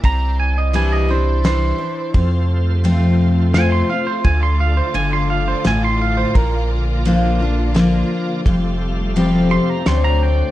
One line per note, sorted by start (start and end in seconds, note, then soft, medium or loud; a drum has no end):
0.02 1.72 C2 loud
0.02 1.37 C3 medium
0.02 2.09 E4 medium
0.02 2.10 C5 medium
0.02 2.11 D5 medium
0.02 0.39 A#5 loud
0.02 kick medium
0.02 ride medium
0.40 0.56 G#5 medium
0.58 0.74 D#5 medium
0.73 1.07 E3 medium
0.73 1.08 G3 loud
0.73 1.08 D4 medium
0.73 1.07 E4 loud
0.73 0.92 G#5 medium
0.73 ride medium
0.92 1.09 D#5 medium
1.09 1.44 D4 soft
1.09 1.43 E4 medium
1.09 1.44 C5 medium
1.44 1.78 E3 medium
1.44 1.78 G3 medium
1.44 1.79 D4 medium
1.44 1.77 E4 medium
1.44 2.81 C5 loud
1.44 snare medium
1.44 ride medium
1.78 2.13 D4 soft
1.78 2.12 E4 medium
2.13 3.48 F2 medium
2.13 3.83 F2 loud
2.13 4.23 C3 medium
2.13 8.42 F3 medium
2.13 6.32 A3 medium
2.13 4.20 F4 medium
2.13 9.83 F4 medium
2.13 4.21 A4 medium
2.13 4.22 C5 medium
2.13 kick medium
2.13 ride medium
2.84 3.51 F3 medium
2.84 3.51 A3 medium
2.84 3.52 C4 medium
2.84 3.52 F4 medium
2.84 ride medium
3.54 3.89 F3 medium
3.54 3.89 A3 medium
3.54 3.89 C4 loud
3.54 3.88 F4 loud
3.54 3.72 G#5 medium
3.54 snare medium
3.54 ride medium
3.72 3.89 C6 medium
3.89 4.25 C4 soft
3.89 4.23 F4 soft
3.89 4.07 F5 medium
4.07 4.24 C5 medium
4.24 4.81 D2 loud
4.24 4.93 D3 medium
4.24 6.33 D3 medium
4.24 6.31 F4 medium
4.24 6.32 A4 medium
4.24 6.33 D5 medium
4.24 4.42 G#5 loud
4.24 kick loud
4.24 ride medium
4.43 4.60 C6 medium
4.60 4.77 F5 medium
4.77 4.94 C5 medium
4.94 5.54 G1 medium
4.94 5.61 D3 medium
4.94 5.12 G#5 medium
4.94 ride medium
5.13 5.30 C6 medium
5.30 5.47 F5 medium
5.48 5.65 C5 medium
5.65 6.25 A1 medium
5.65 6.32 A2 medium
5.65 5.83 G#5 loud
5.65 snare medium
5.65 ride medium
5.85 6.01 C6 medium
6.02 6.18 F5 medium
6.17 6.35 C5 medium
6.34 8.04 A#1 loud
6.34 7.69 A#2 medium
6.34 8.44 D3 medium
6.34 8.44 A#3 medium
6.34 8.41 F4 medium
6.34 6.69 A#4 loud
6.34 8.42 A#4 medium
6.34 8.43 D5 medium
6.34 kick loud
6.34 ride medium
7.05 7.39 F3 medium
7.05 7.40 A#3 loud
7.05 7.40 D4 medium
7.05 7.39 F4 medium
7.05 ride medium
7.40 7.75 D4 medium
7.40 7.74 F4 medium
7.74 8.42 F3 medium
7.74 8.42 A#3 loud
7.74 8.43 D4 loud
7.74 8.43 F4 loud
7.74 snare medium
7.74 ride medium
8.44 9.58 F1 loud
8.44 9.80 F2 medium
8.44 10.51 C3 medium
8.44 9.86 G3 medium
8.44 9.85 A3 medium
8.44 9.83 G4 medium
8.44 9.84 A4 medium
8.44 9.84 F5 medium
8.44 kick loud
8.44 ride medium
9.16 9.50 F3 medium
9.16 9.50 G3 loud
9.16 9.50 C4 loud
9.16 9.49 G4 loud
9.16 ride medium
9.51 9.86 C4 medium
9.51 9.85 G4 medium
9.51 9.70 C6 medium
9.70 9.87 A#5 medium
9.86 10.42 D2 medium
9.86 10.51 D3 medium
9.86 10.51 F#3 medium
9.86 10.51 A3 loud
9.86 10.51 A3 medium
9.86 10.51 C4 loud
9.86 10.51 D4 medium
9.86 10.51 C5 medium
9.86 10.51 D5 medium
9.86 10.04 C6 medium
9.86 snare medium
9.86 ride medium
10.04 10.23 A#5 medium
10.23 10.51 G5 loud